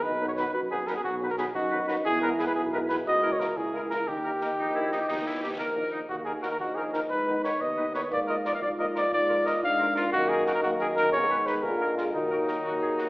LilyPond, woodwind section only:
\new Staff \with { instrumentName = "Woodwind section" } { \time 6/8 \key dis \phrygian \tempo 4. = 119 r8 <dis' b'>8 <dis' b'>8 r8 <dis' b'>8 <dis' b'>8 | r8 <dis' b'>8 <dis' b'>8 r8 <dis' b'>8 <dis' b'>8 | r8 <e' b'>8 <e' b'>8 r8 <e' b'>8 <e' b'>8 | r8 <e' ais'>8 <e' ais'>8 r8 <e' ais'>8 <e' ais'>8 |
r8 <dis' ais'>8 <dis' ais'>8 dis'8 e'8 dis'16 g'16 | dis'8 e'8 g'8 ais'4 dis'8 | \key ees \minor r8 <ees' bes'>8 <ees' bes'>8 r8 <ees' bes'>8 <ees' bes'>8 | r8 <ees' ces''>8 <ees' ces''>8 r8 <ees' ces''>8 <ees' ces''>8 |
r8 <f' bes'>8 <f' bes'>8 r8 <f' bes'>8 <f' bes'>8 | r8 <f' bes'>8 <f' bes'>8 r8 <f' bes'>8 <f' bes'>8 | r8 <ees' bes'>8 <ees' bes'>8 r8 <ees' bes'>8 <ees' bes'>8 | r8 <ees' ces''>8 <ees' ces''>8 r8 <aes' bes'>8 <aes' bes'>8 |
r8 <ges' bes'>8 <ges' bes'>8 ges'8 aes'8 ges'16 r16 | }